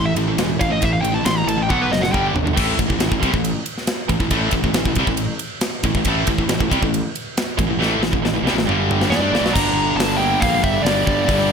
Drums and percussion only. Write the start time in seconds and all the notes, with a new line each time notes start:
0.16 ride
0.38 snare, ride
0.61 kick, ride
0.82 kick, ride
1.05 ride
1.26 snare, ride
1.48 ride
1.70 kick, high tom
1.93 snare
2.03 snare
2.14 kick
2.36 floor tom
2.47 floor tom
2.57 kick, crash
2.79 kick, ride
2.90 kick
3.00 snare, ride
3.12 kick
3.23 kick, ride
3.34 kick
3.44 ride
3.66 ride
3.78 snare
3.87 snare, ride
4.09 kick, ride
4.20 kick
4.31 kick, ride
4.51 kick, ride
4.64 kick
4.74 snare, ride
4.85 kick
4.95 kick, ride
5.07 kick
5.17 ride
5.39 ride
5.61 snare, ride
5.83 kick, ride
5.95 kick
6.05 kick, ride
6.27 kick, ride
6.38 kick
6.49 snare, ride
6.60 kick
6.72 kick, ride
6.83 kick
6.94 ride
7.16 ride
7.37 snare, ride
7.59 kick, ride
7.82 snare
8.03 snare
8.13 kick
8.25 snare
8.47 snare
8.58 snare
8.69 mid tom
8.91 mid tom
9.01 snare
9.12 snare
9.35 snare
9.46 snare
9.56 kick, crash
10.00 snare, open hi-hat
10.42 kick, open hi-hat
10.64 kick
10.86 snare, open hi-hat
11.07 kick
11.29 kick, open hi-hat